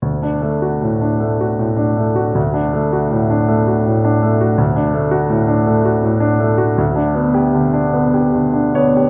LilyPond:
\new Staff \with { instrumentName = "Grand piano" } { \time 3/4 \key d \major \tempo 4 = 79 << { r2. | r2. | r2. | r2 r8 cis''8 | } \\ { d,16 d'16 a16 fis'16 a,16 d'16 a16 fis'16 a,16 d'16 a16 fis'16 | d,16 d'16 a16 fis'16 a,16 d'16 a16 fis'16 a,16 d'16 a16 fis'16 | d,16 d'16 a16 fis'16 a,16 d'16 a16 fis'16 a,16 d'16 a16 fis'16 | d,16 d'16 b16 g'16 d16 d'16 b16 g'16 d16 d'16 b16 g'16 | } >> }